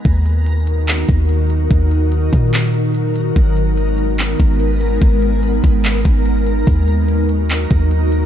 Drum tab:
HH |xxxxxxxx|xxxxxxxx|xxxxxxxx|xxxxxxxx|
CP |----x---|----x---|----x---|----x---|
BD |o----o--|o--o----|o----o--|o--o-o--|

HH |xxxxxxxx|
CP |----x---|
BD |o----o--|